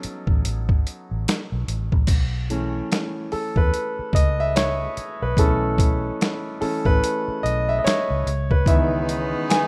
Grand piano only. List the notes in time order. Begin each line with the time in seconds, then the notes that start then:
Already playing: F#3 B3 C#4 D#4 A4
2.50 E3 A3 C#4
3.32 A4
3.57 B4
4.15 D#5
4.40 E5
4.56 C#5
5.22 B4
5.38 E3 A3 C#4 A4
6.61 E3 A3 C#4 A4
6.86 B4
7.43 D#5
7.69 E5
7.79 D#5
7.84 C#5
8.51 B4
8.66 D#3 E3 B3 E5
9.50 G#5